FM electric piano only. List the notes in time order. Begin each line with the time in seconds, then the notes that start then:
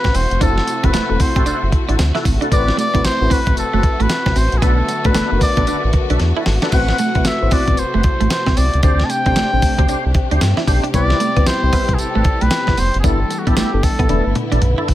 Already playing: A3 C4 E4 F#4 B4 C5
0.41 A3 C4 E4 F#4 C5
0.83 A3 C4 E4 F#4 C5
1.09 A3 C4 E4 F#4 A4
2.51 A3 C4 E4 F#4 B4
2.94 A3 C4 E4 F#4 B4
3.21 A3 C4 E4 F#4 B4
4.62 A3 B3 D4 F#4 B4
5.05 A3 B3 D4 F#4 B4
5.32 A3 B3 D4 F#4 A#4
5.39 B4
6.72 A3 C4 E4 F#4 B4
7.15 A3 C4 E4 F#4 B4
7.41 A3 B3 E4 F#4 C5
7.48 C4
8.83 A3 C4 D4 G4 C5
9.26 A3 C4 D4 G4 C5
9.52 A3 C4 D4 G4 C5
10.94 G3 B3 C4 E4 B4
11.36 G3 B3 C4 E4 B4
11.62 G3 C4 E4 C5
13.03 G3 B3 D4 E4 A4
13.46 G3 B3 D4 E4 A4
13.73 G3 B3 D4 E4 A4
14.09 G#3 B3 D4 E4 B4
14.15 A3